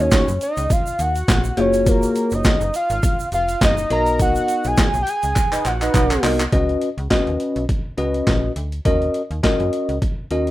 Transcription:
Already playing: tine electric piano A#3 C#4 D#4 F#4 C#5
0.01 analog synth lead C#5
0.12 kick, snare, clap, closed hi-hat, shaker
0.28 fm bass F#2, closed hi-hat, shaker
0.41 analog synth lead D#5, closed hi-hat, shaker
0.57 fm bass C#2, closed hi-hat, shaker
0.70 analog synth lead F5, kick, closed hi-hat, shaker
0.87 shaker
0.99 fm bass D#2, analog synth lead F#5, closed hi-hat, shaker
1.16 closed hi-hat, shaker
1.28 fm bass A#1, kick, snare, clap, closed hi-hat, shaker
1.44 shaker
1.57 fm bass F#1, tine electric piano A#3 F4 F#4 G#4 C#5, analog synth lead C#5, closed hi-hat
1.73 closed hi-hat, shaker
1.86 analog synth lead A#4, kick, closed hi-hat, shaker
2.03 closed hi-hat, shaker
2.16 closed hi-hat, shaker
2.31 fm bass F#1, analog synth lead D#5, closed hi-hat, shaker
2.44 kick, snare, clap, closed hi-hat, shaker
2.61 fm bass F#1, closed hi-hat, shaker
2.74 analog synth lead F5, closed hi-hat, shaker
2.90 fm bass G#1, closed hi-hat, shaker
3.03 kick, closed hi-hat, shaker
3.20 shaker
3.32 fm bass F1, analog synth lead F5, closed hi-hat, shaker
3.49 closed hi-hat, shaker
3.61 fm bass F#1, analog synth lead D#5, kick, snare, clap, closed hi-hat, shaker
3.78 shaker
3.90 fm bass B1, tine electric piano B3 D#4 F#4 A#4 D#5, analog synth lead A#5, closed hi-hat
4.06 closed hi-hat, shaker
4.19 analog synth lead F#5, kick, closed hi-hat, shaker
4.36 closed hi-hat, shaker
4.48 closed hi-hat, shaker
4.64 fm bass B1, analog synth lead G#5, closed hi-hat, shaker
4.77 kick, snare, clap, closed hi-hat, shaker
4.94 fm bass B1, closed hi-hat, shaker
5.02 analog synth lead G5
5.07 analog synth lead G#5, closed hi-hat, shaker
5.23 fm bass C#2, closed hi-hat, shaker
5.36 kick, clap, closed hi-hat, shaker
5.52 analog polysynth D#4 B4 D#5, clap, shaker
5.65 fm bass A#1, analog synth lead F#5, clap, closed hi-hat, shaker
5.81 analog polysynth D#4 B4 D#5, clap, closed hi-hat, shaker
5.94 fm bass B1, kick, clap, closed hi-hat, shaker
6.11 clap, closed hi-hat, shaker
6.23 fm bass C2, tine electric piano B3 D#4 F#4 A#4 D#5, clap, open hi-hat, shaker
6.40 clap, closed hi-hat, shaker
6.52 fm bass C#2, tine electric piano C#4 F#4 B4 D#5, kick, closed hi-hat
6.69 closed hi-hat
6.82 closed hi-hat
6.98 fm bass C#2, closed hi-hat
7.10 tine electric piano C#4 F#4 B4 D#5, kick, snare, clap, closed hi-hat
7.27 fm bass D#2, closed hi-hat
7.40 closed hi-hat
7.56 fm bass B1, closed hi-hat
7.69 kick, closed hi-hat
7.97 fm bass C#2, tine electric piano C#4 F#4 B4 D#5, closed hi-hat
8.14 closed hi-hat
8.27 fm bass A#1, kick, snare, clap, closed hi-hat
8.56 fm bass D2, closed hi-hat
8.72 closed hi-hat
8.85 fm bass D#2, tine electric piano C#4 F#4 A#4 D#5, kick, closed hi-hat
9.02 closed hi-hat
9.14 closed hi-hat
9.31 fm bass D#2, closed hi-hat
9.43 tine electric piano C#4 F#4 A#4 D#5, kick, snare, clap, closed hi-hat
9.60 fm bass F#2, closed hi-hat
9.73 closed hi-hat
9.89 fm bass C#2, closed hi-hat
10.02 kick, closed hi-hat
10.31 fm bass D#2, tine electric piano C#4 F#4 A#4 D#5, closed hi-hat
10.47 closed hi-hat

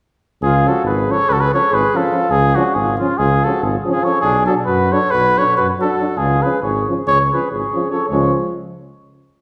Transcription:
0.42 tuba C#2, flugelhorn F4, cornet G#4
0.65 euphonium F3, french horn C#4, cornet A4
0.69 flugelhorn F#4
0.83 tuba G#1, flugelhorn G#4, cornet B4
1.08 euphonium F3, french horn C#4, flugelhorn A4, cornet C#5
1.28 tuba C#2, flugelhorn G#4, cornet B4
1.33 flugelhorn F#4, cornet A4
1.40 flugelhorn G#4, cornet B4
1.52 euphonium F3, french horn C#4, flugelhorn A4, cornet C#5
1.71 tuba G#1, flugelhorn G#4, cornet B4
1.94 euphonium F3, french horn C#4, flugelhorn F4, cornet A4
2.13 euphonium F3, french horn C#4
2.30 tuba C#2, flugelhorn F4, cornet G#4
2.55 euphonium F3, french horn C#4, flugelhorn D4, cornet F#4
2.74 tuba G#1, flugelhorn F4, cornet G#4
2.98 euphonium F3, french horn C#4, flugelhorn C#4, cornet F4
3.17 tuba C#2, flugelhorn F4, cornet G#4
3.44 euphonium F3, french horn C#4, flugelhorn F#4, cornet A4
3.62 tuba G#1, flugelhorn F4, cornet G#4
3.78 flugelhorn F4, cornet G#4
3.85 euphonium F3, french horn C#4
3.92 flugelhorn F4, cornet G#4
4.03 euphonium F3, french horn C#4, flugelhorn A4, cornet C#5
4.22 tuba B1, flugelhorn D4, cornet G#4
4.46 euphonium F#3, french horn D4, flugelhorn F#4, cornet A4
4.65 tuba F#2, flugelhorn F#4, cornet B4
4.91 euphonium F#3, french horn D4, flugelhorn A4, cornet C#5
5.11 tuba B1, flugelhorn F#4, cornet B4
5.37 euphonium F#3, french horn D4, flugelhorn A4, cornet C#5
5.57 tuba F#2, flugelhorn F#4, cornet B4
5.78 euphonium F#3, french horn D4, flugelhorn F#4, cornet A4
5.98 euphonium F#3, french horn D4
6.17 tuba C#2, flugelhorn F4, cornet G#4
6.42 euphonium F3, french horn C#4, flugelhorn G#4, cornet B4
6.62 tuba G#1, flugelhorn G#4, cornet C#5
6.88 euphonium F3, french horn C#4
7.07 tuba C#2, flugelhorn G#4, cornet C#5
7.31 euphonium F3, french horn C#4, flugelhorn G#4, cornet B4
7.51 tuba G#1, flugelhorn G#4, cornet C#5
7.74 euphonium F3, french horn C#4
7.90 euphonium F3, french horn C#4, flugelhorn A4, cornet C#5
8.08 tuba C#2, euphonium F3, flugelhorn G#3, french horn C#4, cornet C#5

